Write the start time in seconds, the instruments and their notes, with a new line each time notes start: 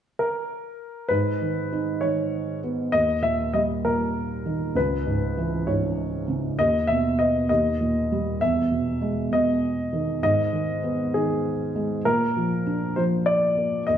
0.19 grand piano A#4
1.09 felt piano G#2, grand piano B4
1.41 felt piano D#3
1.72 felt piano D#4
2.01 felt piano D#3, grand piano C#5
2.63 felt piano B3
2.92 felt piano D#2, grand piano D#5
3.22 felt piano A#2, grand piano E5
3.54 felt piano G3, grand piano D#5
3.85 felt piano A#2, grand piano A#4
4.46 felt piano D#3
4.75 felt piano C#2, grand piano B4
5.06 felt piano G#2
5.37 felt piano E3
5.67 felt piano G#2, grand piano C#5
6.28 felt piano C#3
6.59 felt piano D#2, grand piano D#5
6.87 felt piano B2, grand piano E5
7.19 felt piano B3, grand piano D#5
7.49 felt piano D#2, grand piano D#5
7.81 felt piano A#2
8.12 felt piano G3
8.41 felt piano E2, grand piano E5
8.72 felt piano B2
9.01 felt piano G#3
9.31 felt piano B2, grand piano D#5
9.93 felt piano D#3
10.23 felt piano G#2, grand piano D#5
10.53 felt piano D#3
10.83 felt piano B3
11.14 felt piano D#3, grand piano G#4
11.75 felt piano G#3
12.05 felt piano A#2, grand piano A#4
12.37 felt piano F3
12.66 felt piano D4
12.96 felt piano F3, grand piano C5
13.26 grand piano D5
13.57 felt piano A#3
13.87 felt piano D#2, grand piano D#5